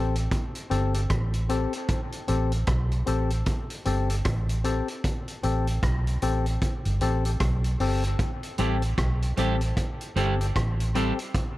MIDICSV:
0, 0, Header, 1, 5, 480
1, 0, Start_track
1, 0, Key_signature, 0, "minor"
1, 0, Tempo, 787402
1, 1153, Time_signature, 4, 2, 24, 8
1, 7058, End_track
2, 0, Start_track
2, 0, Title_t, "Synth stab"
2, 0, Program_c, 0, 62
2, 0, Note_on_c, 0, 60, 97
2, 0, Note_on_c, 0, 67, 85
2, 0, Note_on_c, 0, 69, 102
2, 94, Note_off_c, 0, 60, 0
2, 96, Note_off_c, 0, 67, 0
2, 98, Note_off_c, 0, 69, 0
2, 427, Note_on_c, 0, 60, 100
2, 431, Note_on_c, 0, 67, 80
2, 434, Note_on_c, 0, 69, 102
2, 569, Note_off_c, 0, 69, 0
2, 570, Note_off_c, 0, 67, 0
2, 574, Note_off_c, 0, 60, 0
2, 576, Note_on_c, 0, 69, 48
2, 577, Note_on_c, 0, 67, 42
2, 615, Note_off_c, 0, 67, 0
2, 615, Note_off_c, 0, 69, 0
2, 910, Note_on_c, 0, 60, 102
2, 913, Note_on_c, 0, 67, 83
2, 916, Note_on_c, 0, 69, 99
2, 1056, Note_off_c, 0, 60, 0
2, 1057, Note_off_c, 0, 67, 0
2, 1059, Note_off_c, 0, 69, 0
2, 1390, Note_on_c, 0, 60, 97
2, 1393, Note_on_c, 0, 67, 85
2, 1397, Note_on_c, 0, 69, 97
2, 1536, Note_off_c, 0, 60, 0
2, 1537, Note_off_c, 0, 67, 0
2, 1539, Note_off_c, 0, 69, 0
2, 1868, Note_on_c, 0, 60, 95
2, 1873, Note_on_c, 0, 67, 87
2, 1876, Note_on_c, 0, 69, 102
2, 2015, Note_off_c, 0, 60, 0
2, 2017, Note_off_c, 0, 67, 0
2, 2019, Note_off_c, 0, 69, 0
2, 2350, Note_on_c, 0, 60, 96
2, 2353, Note_on_c, 0, 67, 85
2, 2358, Note_on_c, 0, 69, 98
2, 2493, Note_off_c, 0, 69, 0
2, 2494, Note_off_c, 0, 67, 0
2, 2496, Note_off_c, 0, 60, 0
2, 2500, Note_on_c, 0, 69, 46
2, 2501, Note_on_c, 0, 67, 38
2, 2537, Note_off_c, 0, 67, 0
2, 2537, Note_off_c, 0, 69, 0
2, 2830, Note_on_c, 0, 60, 93
2, 2834, Note_on_c, 0, 67, 85
2, 2837, Note_on_c, 0, 69, 102
2, 2976, Note_off_c, 0, 60, 0
2, 2978, Note_off_c, 0, 67, 0
2, 2979, Note_off_c, 0, 69, 0
2, 3312, Note_on_c, 0, 60, 94
2, 3315, Note_on_c, 0, 67, 78
2, 3319, Note_on_c, 0, 69, 98
2, 3457, Note_off_c, 0, 60, 0
2, 3458, Note_off_c, 0, 67, 0
2, 3460, Note_off_c, 0, 69, 0
2, 3794, Note_on_c, 0, 60, 92
2, 3796, Note_on_c, 0, 67, 90
2, 3800, Note_on_c, 0, 69, 107
2, 3938, Note_off_c, 0, 60, 0
2, 3939, Note_off_c, 0, 67, 0
2, 3941, Note_off_c, 0, 69, 0
2, 4275, Note_on_c, 0, 60, 94
2, 4277, Note_on_c, 0, 67, 82
2, 4282, Note_on_c, 0, 69, 104
2, 4415, Note_off_c, 0, 67, 0
2, 4415, Note_off_c, 0, 69, 0
2, 4418, Note_off_c, 0, 60, 0
2, 4422, Note_on_c, 0, 69, 46
2, 4423, Note_on_c, 0, 67, 45
2, 4458, Note_off_c, 0, 67, 0
2, 4458, Note_off_c, 0, 69, 0
2, 4756, Note_on_c, 0, 60, 98
2, 4759, Note_on_c, 0, 67, 86
2, 4763, Note_on_c, 0, 69, 97
2, 4899, Note_off_c, 0, 60, 0
2, 4900, Note_off_c, 0, 67, 0
2, 4902, Note_off_c, 0, 69, 0
2, 5235, Note_on_c, 0, 60, 95
2, 5238, Note_on_c, 0, 67, 87
2, 5243, Note_on_c, 0, 69, 99
2, 5378, Note_off_c, 0, 60, 0
2, 5380, Note_off_c, 0, 67, 0
2, 5382, Note_off_c, 0, 69, 0
2, 5715, Note_on_c, 0, 60, 96
2, 5720, Note_on_c, 0, 67, 88
2, 5723, Note_on_c, 0, 69, 97
2, 5859, Note_off_c, 0, 60, 0
2, 5861, Note_off_c, 0, 67, 0
2, 5863, Note_off_c, 0, 69, 0
2, 6196, Note_on_c, 0, 60, 88
2, 6199, Note_on_c, 0, 67, 85
2, 6202, Note_on_c, 0, 69, 97
2, 6336, Note_off_c, 0, 69, 0
2, 6338, Note_off_c, 0, 67, 0
2, 6339, Note_off_c, 0, 60, 0
2, 6344, Note_on_c, 0, 69, 42
2, 6345, Note_on_c, 0, 67, 44
2, 6379, Note_off_c, 0, 69, 0
2, 6380, Note_off_c, 0, 67, 0
2, 6676, Note_on_c, 0, 60, 96
2, 6680, Note_on_c, 0, 67, 88
2, 6682, Note_on_c, 0, 69, 101
2, 6819, Note_off_c, 0, 60, 0
2, 6821, Note_off_c, 0, 67, 0
2, 6822, Note_off_c, 0, 69, 0
2, 7058, End_track
3, 0, Start_track
3, 0, Title_t, "Clean electric guitar"
3, 0, Program_c, 1, 27
3, 5231, Note_on_c, 1, 55, 72
3, 5238, Note_on_c, 1, 60, 80
3, 5241, Note_on_c, 1, 64, 79
3, 5245, Note_on_c, 1, 67, 89
3, 5338, Note_off_c, 1, 55, 0
3, 5341, Note_off_c, 1, 60, 0
3, 5343, Note_off_c, 1, 64, 0
3, 5345, Note_off_c, 1, 67, 0
3, 5712, Note_on_c, 1, 55, 80
3, 5716, Note_on_c, 1, 60, 82
3, 5720, Note_on_c, 1, 64, 85
3, 5723, Note_on_c, 1, 67, 91
3, 5818, Note_off_c, 1, 55, 0
3, 5820, Note_off_c, 1, 60, 0
3, 5822, Note_off_c, 1, 64, 0
3, 5824, Note_off_c, 1, 67, 0
3, 6192, Note_on_c, 1, 55, 92
3, 6196, Note_on_c, 1, 60, 99
3, 6201, Note_on_c, 1, 64, 94
3, 6204, Note_on_c, 1, 67, 104
3, 6299, Note_off_c, 1, 55, 0
3, 6301, Note_off_c, 1, 60, 0
3, 6303, Note_off_c, 1, 64, 0
3, 6305, Note_off_c, 1, 67, 0
3, 6674, Note_on_c, 1, 55, 89
3, 6679, Note_on_c, 1, 60, 78
3, 6683, Note_on_c, 1, 64, 92
3, 6685, Note_on_c, 1, 67, 106
3, 6780, Note_off_c, 1, 55, 0
3, 6782, Note_off_c, 1, 60, 0
3, 6784, Note_off_c, 1, 64, 0
3, 6785, Note_off_c, 1, 67, 0
3, 7058, End_track
4, 0, Start_track
4, 0, Title_t, "Fingered electric bass"
4, 0, Program_c, 2, 33
4, 0, Note_on_c, 2, 33, 92
4, 161, Note_off_c, 2, 33, 0
4, 434, Note_on_c, 2, 31, 96
4, 642, Note_off_c, 2, 31, 0
4, 672, Note_on_c, 2, 33, 92
4, 1006, Note_off_c, 2, 33, 0
4, 1396, Note_on_c, 2, 33, 100
4, 1603, Note_off_c, 2, 33, 0
4, 1632, Note_on_c, 2, 35, 90
4, 1841, Note_off_c, 2, 35, 0
4, 1874, Note_on_c, 2, 33, 90
4, 2082, Note_off_c, 2, 33, 0
4, 2354, Note_on_c, 2, 31, 94
4, 2562, Note_off_c, 2, 31, 0
4, 2593, Note_on_c, 2, 33, 89
4, 2927, Note_off_c, 2, 33, 0
4, 3316, Note_on_c, 2, 33, 87
4, 3523, Note_off_c, 2, 33, 0
4, 3554, Note_on_c, 2, 35, 80
4, 3762, Note_off_c, 2, 35, 0
4, 3794, Note_on_c, 2, 33, 97
4, 4002, Note_off_c, 2, 33, 0
4, 4180, Note_on_c, 2, 31, 75
4, 4262, Note_off_c, 2, 31, 0
4, 4277, Note_on_c, 2, 33, 95
4, 4484, Note_off_c, 2, 33, 0
4, 4515, Note_on_c, 2, 35, 96
4, 4723, Note_off_c, 2, 35, 0
4, 4754, Note_on_c, 2, 31, 86
4, 4962, Note_off_c, 2, 31, 0
4, 5235, Note_on_c, 2, 33, 96
4, 5443, Note_off_c, 2, 33, 0
4, 5476, Note_on_c, 2, 35, 79
4, 5683, Note_off_c, 2, 35, 0
4, 5715, Note_on_c, 2, 33, 90
4, 5923, Note_off_c, 2, 33, 0
4, 6193, Note_on_c, 2, 31, 93
4, 6402, Note_off_c, 2, 31, 0
4, 6437, Note_on_c, 2, 33, 92
4, 6770, Note_off_c, 2, 33, 0
4, 7058, End_track
5, 0, Start_track
5, 0, Title_t, "Drums"
5, 94, Note_on_c, 9, 42, 55
5, 155, Note_off_c, 9, 42, 0
5, 190, Note_on_c, 9, 42, 79
5, 191, Note_on_c, 9, 36, 105
5, 251, Note_off_c, 9, 42, 0
5, 252, Note_off_c, 9, 36, 0
5, 334, Note_on_c, 9, 42, 53
5, 395, Note_off_c, 9, 42, 0
5, 432, Note_on_c, 9, 42, 71
5, 493, Note_off_c, 9, 42, 0
5, 574, Note_on_c, 9, 42, 63
5, 635, Note_off_c, 9, 42, 0
5, 669, Note_on_c, 9, 42, 86
5, 670, Note_on_c, 9, 37, 106
5, 671, Note_on_c, 9, 36, 110
5, 730, Note_off_c, 9, 42, 0
5, 731, Note_off_c, 9, 37, 0
5, 732, Note_off_c, 9, 36, 0
5, 814, Note_on_c, 9, 42, 59
5, 875, Note_off_c, 9, 42, 0
5, 910, Note_on_c, 9, 42, 69
5, 971, Note_off_c, 9, 42, 0
5, 1053, Note_on_c, 9, 42, 48
5, 1114, Note_off_c, 9, 42, 0
5, 1148, Note_on_c, 9, 42, 89
5, 1151, Note_on_c, 9, 36, 108
5, 1209, Note_off_c, 9, 42, 0
5, 1212, Note_off_c, 9, 36, 0
5, 1294, Note_on_c, 9, 42, 49
5, 1355, Note_off_c, 9, 42, 0
5, 1389, Note_on_c, 9, 42, 61
5, 1450, Note_off_c, 9, 42, 0
5, 1534, Note_on_c, 9, 42, 49
5, 1595, Note_off_c, 9, 42, 0
5, 1626, Note_on_c, 9, 42, 77
5, 1630, Note_on_c, 9, 37, 108
5, 1631, Note_on_c, 9, 36, 117
5, 1687, Note_off_c, 9, 42, 0
5, 1691, Note_off_c, 9, 37, 0
5, 1692, Note_off_c, 9, 36, 0
5, 1777, Note_on_c, 9, 42, 48
5, 1838, Note_off_c, 9, 42, 0
5, 1869, Note_on_c, 9, 42, 66
5, 1930, Note_off_c, 9, 42, 0
5, 2013, Note_on_c, 9, 42, 52
5, 2074, Note_off_c, 9, 42, 0
5, 2109, Note_on_c, 9, 42, 80
5, 2113, Note_on_c, 9, 36, 109
5, 2170, Note_off_c, 9, 42, 0
5, 2174, Note_off_c, 9, 36, 0
5, 2255, Note_on_c, 9, 42, 55
5, 2316, Note_off_c, 9, 42, 0
5, 2349, Note_on_c, 9, 42, 70
5, 2410, Note_off_c, 9, 42, 0
5, 2496, Note_on_c, 9, 42, 63
5, 2557, Note_off_c, 9, 42, 0
5, 2589, Note_on_c, 9, 42, 83
5, 2590, Note_on_c, 9, 37, 102
5, 2592, Note_on_c, 9, 36, 115
5, 2650, Note_off_c, 9, 42, 0
5, 2651, Note_off_c, 9, 37, 0
5, 2653, Note_off_c, 9, 36, 0
5, 2737, Note_on_c, 9, 42, 60
5, 2798, Note_off_c, 9, 42, 0
5, 2830, Note_on_c, 9, 42, 74
5, 2891, Note_off_c, 9, 42, 0
5, 2975, Note_on_c, 9, 42, 48
5, 3036, Note_off_c, 9, 42, 0
5, 3071, Note_on_c, 9, 42, 91
5, 3073, Note_on_c, 9, 36, 105
5, 3132, Note_off_c, 9, 42, 0
5, 3134, Note_off_c, 9, 36, 0
5, 3217, Note_on_c, 9, 42, 50
5, 3278, Note_off_c, 9, 42, 0
5, 3311, Note_on_c, 9, 42, 63
5, 3372, Note_off_c, 9, 42, 0
5, 3457, Note_on_c, 9, 42, 45
5, 3518, Note_off_c, 9, 42, 0
5, 3551, Note_on_c, 9, 42, 81
5, 3553, Note_on_c, 9, 36, 112
5, 3555, Note_on_c, 9, 37, 102
5, 3612, Note_off_c, 9, 42, 0
5, 3614, Note_off_c, 9, 36, 0
5, 3616, Note_off_c, 9, 37, 0
5, 3700, Note_on_c, 9, 42, 47
5, 3761, Note_off_c, 9, 42, 0
5, 3790, Note_on_c, 9, 42, 64
5, 3851, Note_off_c, 9, 42, 0
5, 3937, Note_on_c, 9, 42, 50
5, 3998, Note_off_c, 9, 42, 0
5, 4032, Note_on_c, 9, 42, 82
5, 4034, Note_on_c, 9, 36, 110
5, 4093, Note_off_c, 9, 42, 0
5, 4095, Note_off_c, 9, 36, 0
5, 4176, Note_on_c, 9, 42, 55
5, 4237, Note_off_c, 9, 42, 0
5, 4271, Note_on_c, 9, 42, 70
5, 4332, Note_off_c, 9, 42, 0
5, 4419, Note_on_c, 9, 42, 58
5, 4480, Note_off_c, 9, 42, 0
5, 4511, Note_on_c, 9, 42, 87
5, 4512, Note_on_c, 9, 37, 116
5, 4513, Note_on_c, 9, 36, 113
5, 4572, Note_off_c, 9, 42, 0
5, 4573, Note_off_c, 9, 37, 0
5, 4574, Note_off_c, 9, 36, 0
5, 4658, Note_on_c, 9, 42, 59
5, 4718, Note_off_c, 9, 42, 0
5, 4754, Note_on_c, 9, 46, 71
5, 4815, Note_off_c, 9, 46, 0
5, 4898, Note_on_c, 9, 42, 48
5, 4959, Note_off_c, 9, 42, 0
5, 4992, Note_on_c, 9, 42, 85
5, 4993, Note_on_c, 9, 36, 109
5, 5053, Note_off_c, 9, 42, 0
5, 5054, Note_off_c, 9, 36, 0
5, 5139, Note_on_c, 9, 42, 49
5, 5200, Note_off_c, 9, 42, 0
5, 5229, Note_on_c, 9, 42, 61
5, 5290, Note_off_c, 9, 42, 0
5, 5376, Note_on_c, 9, 42, 49
5, 5437, Note_off_c, 9, 42, 0
5, 5473, Note_on_c, 9, 36, 118
5, 5473, Note_on_c, 9, 42, 74
5, 5476, Note_on_c, 9, 37, 113
5, 5534, Note_off_c, 9, 36, 0
5, 5534, Note_off_c, 9, 42, 0
5, 5537, Note_off_c, 9, 37, 0
5, 5622, Note_on_c, 9, 42, 50
5, 5683, Note_off_c, 9, 42, 0
5, 5713, Note_on_c, 9, 42, 61
5, 5774, Note_off_c, 9, 42, 0
5, 5857, Note_on_c, 9, 42, 52
5, 5918, Note_off_c, 9, 42, 0
5, 5954, Note_on_c, 9, 42, 90
5, 5955, Note_on_c, 9, 36, 105
5, 6015, Note_off_c, 9, 42, 0
5, 6016, Note_off_c, 9, 36, 0
5, 6100, Note_on_c, 9, 42, 51
5, 6161, Note_off_c, 9, 42, 0
5, 6196, Note_on_c, 9, 42, 73
5, 6257, Note_off_c, 9, 42, 0
5, 6344, Note_on_c, 9, 42, 58
5, 6405, Note_off_c, 9, 42, 0
5, 6436, Note_on_c, 9, 36, 111
5, 6437, Note_on_c, 9, 42, 88
5, 6438, Note_on_c, 9, 37, 102
5, 6497, Note_off_c, 9, 36, 0
5, 6498, Note_off_c, 9, 42, 0
5, 6499, Note_off_c, 9, 37, 0
5, 6584, Note_on_c, 9, 42, 58
5, 6645, Note_off_c, 9, 42, 0
5, 6676, Note_on_c, 9, 42, 72
5, 6737, Note_off_c, 9, 42, 0
5, 6820, Note_on_c, 9, 42, 52
5, 6881, Note_off_c, 9, 42, 0
5, 6916, Note_on_c, 9, 36, 109
5, 6917, Note_on_c, 9, 42, 81
5, 6977, Note_off_c, 9, 36, 0
5, 6978, Note_off_c, 9, 42, 0
5, 7058, End_track
0, 0, End_of_file